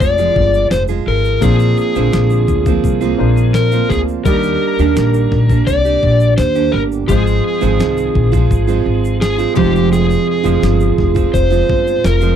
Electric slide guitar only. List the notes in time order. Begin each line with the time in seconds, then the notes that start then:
0.00 D5
0.71 C5
1.08 A#4
1.42 G#4
3.55 A#4
3.90 G#4
4.25 A#4
5.67 D5
6.37 C5
6.72 A#4
7.08 G#4
9.21 G#4
9.57 G4
9.93 G#4
11.34 C5
12.05 A#4